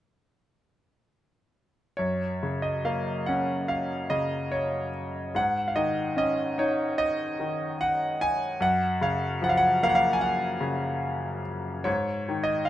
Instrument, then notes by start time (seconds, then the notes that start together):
grand piano
1.97 F#2 C#5
2.43 C#3
2.62 D#5
2.85 A#3 F5
3.26 C#4 F#5
3.68 F5
4.10 C#3 D#5
4.52 C#5
5.35 G#2 F#5
5.68 F5
5.76 D#3 D#5
6.16 C#4 D#5
6.58 D#4 C#5
6.98 D#5
7.40 D#3
7.81 F#5
8.21 G#5
8.60 F#2 F#5
9.01 C#3 F5
9.42 F3 F#5
9.49 F5
9.57 F#5
9.83 A#3 F5
9.89 F#5
9.95 F5
10.13 G#5
10.21 F#5
10.61 C#3
11.84 G#2 C#5
12.29 D#3
12.44 D#5
12.65 F5